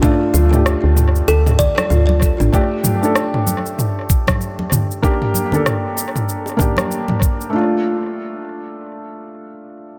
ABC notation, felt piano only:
X:1
M:4/4
L:1/16
Q:"Swing 16ths" 1/4=96
K:Dm
V:1 name="Felt piano"
[A,DF]3 [A,DG]12- [A,DG] | [A,DG]3 [A,DA]12- [A,DA] | [B,DG]3 [B,DA]6- [B,DA] [B,DG]6 | [A,DF]16 |]